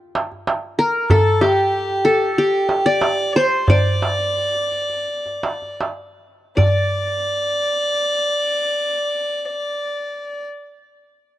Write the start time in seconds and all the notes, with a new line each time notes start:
0.15 darbuka tek
0.32 darbuka ka
0.47 darbuka tek
0.79 A#4
1.10 A4, darbuka dum
1.41 G4, darbuka tek
1.73 darbuka ka
1.89 darbuka ka
2.05 A4, darbuka ka
2.35 G4
2.69 darbuka tek
2.85 D5, darbuka ka
3.01 darbuka tek
3.33 C5
3.66 D5, darbuka dum
4.02 darbuka tek
4.19 darbuka ka
4.37 darbuka ka
4.54 darbuka ka
4.72 darbuka ka
4.90 darbuka ka
5.08 darbuka ka
5.26 darbuka ka
5.43 darbuka tek
5.62 darbuka ka
5.81 darbuka tek
6.57 D5, darbuka dum